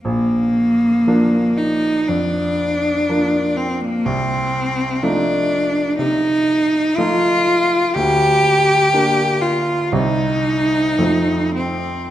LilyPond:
<<
  \new Staff \with { instrumentName = "Cello" } { \time 4/4 \key bes \major \tempo 4 = 60 bes4. ees'8 d'4. c'16 bes16 | c'4 d'4 ees'4 f'4 | g'4. f'8 ees'4. c'8 | }
  \new Staff \with { instrumentName = "Grand piano" } { \time 4/4 \key bes \major bes,,4 <f bes d'>4 f,4 <f bes d'>4 | c,4 <f a ees'>4 c4 <f a ees'>4 | d,4 <bes d'>4 <c, g c' ees'>4 <f, f a c'>4 | }
>>